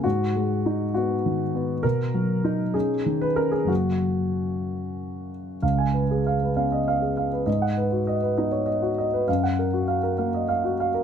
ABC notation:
X:1
M:6/8
L:1/16
Q:3/8=66
K:F#
V:1 name="Grand piano"
F6 F6 | A6 G3 B A G | F8- F2 z2 | e g B G e B e d e G e B |
d f B F d B d c d F d B | e f A F e A e d e F e A |]
V:2 name="Grand piano"
G,,2 G,2 D2 B,2 D,2 B,2 | B,,2 F,2 D2 C2 D,2 C2 | [F,,C,F,A,]12 | C,,6 [B,C]6 |
G,,6 [B,D]6 | F,,6 A,6 |]